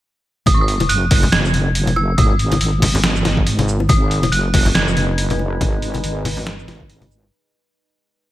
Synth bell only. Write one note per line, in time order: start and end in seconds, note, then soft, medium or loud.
0.47 0.55 D#6 loud
0.54 0.62 C#6 medium
0.61 0.90 D#6 loud
0.89 1.33 F#6 loud
1.32 1.98 G#6 loud
1.96 2.18 E6 medium
2.18 3.64 D#6 loud
3.89 4.33 D#6 loud
4.32 4.76 F#6 loud
4.75 6.85 G#6 medium